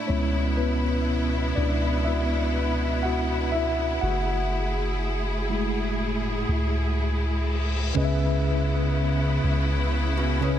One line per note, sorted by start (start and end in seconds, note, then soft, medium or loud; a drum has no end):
0.00 0.11 D4 medium
0.00 7.92 E4 medium
0.00 0.11 D5 medium
0.08 1.53 C#2 loud
0.08 3.98 B2 medium
0.08 3.98 G#3 medium
0.08 3.98 B3 medium
0.08 0.58 B3 medium
0.08 0.55 C#4 medium
0.08 2.05 E4 medium
0.08 0.54 C#5 medium
0.57 1.53 B3 medium
0.57 1.59 B4 medium
1.55 3.99 C#2 loud
1.55 2.03 D4 medium
1.55 2.07 D5 medium
2.04 3.01 E4 medium
2.04 3.06 E5 loud
3.03 3.50 F#4 medium
3.03 3.54 F#5 loud
3.52 3.99 E4 medium
3.52 4.03 E5 loud
4.01 6.45 F#1 loud
4.01 7.92 A2 medium
4.01 6.94 F#4 medium
4.01 7.92 G#4 medium
4.01 6.93 F#5 loud
5.50 6.15 G#3 medium
5.50 6.16 A3 medium
5.50 6.16 E4 medium
5.99 reverse cymbal medium
6.49 7.92 C#2 loud
7.94 9.40 C#2 loud
7.94 9.74 C#3 medium
7.94 10.59 C#3 medium
7.94 10.59 B3 medium
7.94 9.75 C#4 medium
7.94 10.59 E4 medium
7.94 9.75 G#4 medium
7.94 9.76 B4 medium
7.94 8.03 D#5 medium
8.04 9.79 E5 loud
9.44 10.59 C#2 loud
10.17 10.41 C#4 medium
10.17 10.41 F#4 medium
10.41 10.59 C#3 medium
10.41 10.59 C#4 medium
10.41 10.59 G#4 medium
10.41 10.59 B4 medium
10.41 10.59 C#5 medium